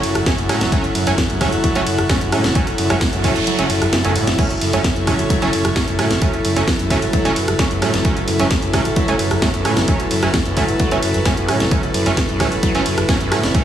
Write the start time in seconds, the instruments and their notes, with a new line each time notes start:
Already playing: synth drone F#3, analog synth pad E4 A4 F#5
0.03 sub bass F#1, acid bass F#2, open hi-hat, ride
0.15 sub bass F#1, acid bass F#2, cross-stick, closed hi-hat
0.26 acid bass F#2, analog polysynth F#3 A3 C#4, kick, snare, closed hi-hat, ride
0.38 sub bass F#1, acid bass F#2, closed hi-hat
0.49 sub bass F#1, acid bass A2, analog polysynth F#3 A3 C#4, cross-stick, open hi-hat, ride
0.61 sub bass F#1, acid bass E2, snare, closed hi-hat
0.72 acid bass F#2, analog polysynth F#3 A3 C#4, kick, closed hi-hat, ride
0.84 sub bass F#1, acid bass F#1, closed hi-hat
0.95 sub bass F#1, acid bass F#2, open hi-hat, ride
1.07 sub bass F#1, acid bass F#2, analog polysynth F#3 A3 C#4, closed hi-hat
1.18 acid bass F#2, kick, snare, closed hi-hat
1.30 acid bass F#2, closed hi-hat
1.41 sub bass F#1, acid bass A2, analog polysynth F#3 A3 C#4, kick, cross-stick, open hi-hat, ride
1.52 sub bass F#1, acid bass F#2, closed hi-hat
1.64 acid bass F#3, kick, closed hi-hat, ride
1.75 acid bass F#1, sub bass F#1, analog polysynth F#3 A3 C#4, closed hi-hat
1.86 sub bass F#1, acid bass F#2, open hi-hat, ride
1.98 sub bass F#1, acid bass F#2, cross-stick, closed hi-hat
2.09 acid bass F#2, analog polysynth F#3 A3 C#4, kick, snare, closed hi-hat, ride
2.21 sub bass F#1, acid bass F#2, closed hi-hat
2.32 sub bass F#1, acid bass A2, analog polysynth F#3 A3 C#4, cross-stick, open hi-hat, ride
2.44 sub bass F#1, acid bass E2, snare, closed hi-hat
2.55 acid bass F#2, analog polysynth F#3 A3 C#4, kick, closed hi-hat, ride, noise sweep
2.67 acid bass F#1, sub bass F#1, closed hi-hat
2.78 sub bass F#1, acid bass F#2, open hi-hat, ride
2.90 sub bass F#1, acid bass F#2, analog polysynth F#3 A3 C#4, cross-stick, closed hi-hat
3.01 acid bass F#2, kick, snare, closed hi-hat, ride
3.13 acid bass F#2, closed hi-hat
3.24 sub bass F#1, acid bass A2, analog polysynth F#3 A3 C#4, kick, open hi-hat, ride
3.36 sub bass F#1, acid bass F#2, closed hi-hat
3.47 acid bass F#3, closed hi-hat, ride
3.59 acid bass F#1, sub bass F#1, analog polysynth F#3 A3 C#4, closed hi-hat
3.70 sub bass F#1, acid bass F#2, open hi-hat, ride
3.81 sub bass F#1, acid bass F#2, cross-stick, closed hi-hat
3.93 acid bass F#2, snare, closed hi-hat, ride
4.04 sub bass F#1, acid bass F#2, analog polysynth F#3 A3 C#4, closed hi-hat
4.15 sub bass F#1, acid bass A2, open hi-hat, ride
4.27 sub bass F#1, acid bass E2, snare, closed hi-hat
4.38 acid bass F#2, synth drone F#3, analog polysynth F#3 A3 C#4, kick, closed hi-hat, crash, ride
4.50 acid bass F#1, sub bass F#1, analog synth pad C#5, closed hi-hat
4.61 sub bass F#1, acid bass F#2, open hi-hat, ride
4.73 sub bass F#1, acid bass F#2, analog polysynth F#3 A3 C#4, closed hi-hat
4.84 acid bass F#2, kick, snare, closed hi-hat, ride
4.96 acid bass F#2, closed hi-hat
5.07 sub bass F#1, acid bass A2, analog polysynth F#3 A3 C#4, kick, cross-stick, open hi-hat, ride
5.19 sub bass F#1, acid bass F#2, closed hi-hat
5.30 acid bass F#3, kick, closed hi-hat, ride
5.42 acid bass F#1, sub bass F#1, analog polysynth F#3 A3 C#4, closed hi-hat
5.53 sub bass F#1, acid bass F#2, open hi-hat, ride
5.65 sub bass F#1, acid bass F#2, cross-stick, closed hi-hat
5.76 acid bass F#2, analog polysynth F#3 A3 C#4, kick, snare, closed hi-hat
5.88 sub bass F#1, acid bass F#2, closed hi-hat
5.99 sub bass F#1, acid bass A2, analog polysynth F#3 A3 C#4, cross-stick, open hi-hat, ride
6.11 sub bass F#1, acid bass E2, snare, closed hi-hat
6.22 acid bass F#2, analog polysynth F#3 A3 C#4, kick, closed hi-hat, ride
6.33 acid bass F#1, sub bass F#1, closed hi-hat
6.45 sub bass F#1, acid bass F#2, open hi-hat, ride
6.56 sub bass F#1, acid bass F#2, analog polysynth F#3 A3 C#4, closed hi-hat
6.67 acid bass F#2, kick, snare, closed hi-hat, ride
6.79 acid bass F#2, analog synth pad B4, closed hi-hat
6.90 sub bass F#1, acid bass A2, analog polysynth F#3 A3 C#4, kick, open hi-hat, ride
7.02 sub bass F#1, acid bass F#2, closed hi-hat
7.13 acid bass F#3, kick, closed hi-hat, ride
7.25 acid bass F#1, sub bass F#1, analog polysynth F#3 A3 C#4, closed hi-hat
7.36 sub bass F#1, acid bass F#2, open hi-hat, ride
7.48 sub bass F#1, acid bass F#2, cross-stick, closed hi-hat
7.59 acid bass F#2, analog polysynth F#3 A3 C#4, kick, snare, closed hi-hat, ride
7.71 sub bass F#1, acid bass F#2, closed hi-hat
7.82 sub bass F#1, acid bass A2, analog polysynth F#3 A3 C#4, cross-stick, open hi-hat, ride
7.94 sub bass F#1, acid bass E2, snare, closed hi-hat
8.05 acid bass F#2, analog polysynth F#3 A3 C#4, kick, closed hi-hat, ride
8.17 acid bass F#1, sub bass F#1, closed hi-hat
8.28 sub bass F#1, acid bass F#2, open hi-hat, ride
8.39 sub bass F#1, acid bass F#2, analog polysynth F#3 A3 C#4, closed hi-hat
8.50 acid bass F#2, kick, snare, closed hi-hat, ride
8.62 acid bass F#2, closed hi-hat
8.73 sub bass F#1, acid bass A2, analog polysynth F#3 A3 C#4, kick, cross-stick, open hi-hat, ride
8.85 sub bass F#1, acid bass F#2, closed hi-hat
8.96 acid bass F#3, kick, closed hi-hat, ride
9.08 sub bass F#1, acid bass F#1, analog polysynth F#3 A3 C#4, closed hi-hat
9.19 sub bass F#1, acid bass F#2, open hi-hat, ride
9.31 sub bass F#1, acid bass F#2, cross-stick, closed hi-hat
9.42 acid bass F#2, analog polysynth F#3 A3 C#4, kick, snare, closed hi-hat, ride
9.54 sub bass F#1, acid bass F#2, closed hi-hat
9.65 sub bass F#1, acid bass A2, analog polysynth F#3 A3 C#4, cross-stick, open hi-hat, ride
9.77 sub bass F#1, acid bass E2, snare, closed hi-hat
9.88 acid bass F#2, analog polysynth F#3 A3 C#4, kick, closed hi-hat, ride
10.00 sub bass F#1, acid bass F#1, closed hi-hat
10.11 sub bass F#1, acid bass F#2, open hi-hat, ride
10.23 sub bass F#1, acid bass F#2, analog polysynth F#3 A3 C#4, cross-stick, closed hi-hat
10.34 acid bass F#2, kick, snare, closed hi-hat, ride
10.46 acid bass F#2, closed hi-hat
10.57 sub bass F#1, acid bass A2, analog polysynth F#3 A3 C#4, kick, open hi-hat, ride
10.68 sub bass F#1, acid bass F#2, closed hi-hat
10.80 acid bass F#3, kick, closed hi-hat, ride
10.91 sub bass F#1, acid bass F#1, analog polysynth F#3 A3 C#4, closed hi-hat
11.03 sub bass F#1, acid bass F#2, open hi-hat, ride
11.14 sub bass F#1, acid bass F#2, closed hi-hat
11.25 acid bass F#2, analog polysynth F#3 A3 C#4, kick, snare, closed hi-hat, ride
11.37 sub bass F#1, acid bass F#2, closed hi-hat
11.48 sub bass F#1, acid bass A2, analog polysynth F#3 A3 C#4, cross-stick, open hi-hat, ride
11.60 sub bass F#1, acid bass E2, snare, closed hi-hat
11.71 acid bass F#2, analog polysynth F#3 A3 C#4, kick, closed hi-hat, ride
11.83 sub bass F#1, acid bass F#1, closed hi-hat
11.94 sub bass F#1, acid bass F#2, open hi-hat, ride
12.06 sub bass F#1, acid bass F#2, analog polysynth F#3 A3 C#4, closed hi-hat
12.17 acid bass F#2, kick, snare, closed hi-hat, ride
12.29 acid bass F#2, closed hi-hat
12.40 sub bass F#1, acid bass A2, analog polysynth F#3 A3 C#4, kick, cross-stick, open hi-hat, ride
12.52 sub bass F#1, acid bass F#2, closed hi-hat
12.63 acid bass F#3, kick, closed hi-hat, ride
12.75 acid bass F#1, sub bass F#1, analog polysynth F#3 A3 C#4, closed hi-hat
12.86 sub bass F#1, acid bass F#2, open hi-hat, ride
12.98 sub bass F#1, acid bass F#2, cross-stick, closed hi-hat
13.09 acid bass F#2, analog polysynth F#3 A3 C#4, kick, snare, closed hi-hat, ride
13.21 sub bass F#1, acid bass F#2, closed hi-hat
13.32 sub bass F#1, acid bass A2, analog polysynth F#3 A3 C#4, cross-stick, open hi-hat, ride
13.43 sub bass F#1, acid bass E2, snare, closed hi-hat
13.55 acid bass F#2, analog polysynth F#3 A3 C#4, kick, closed hi-hat, ride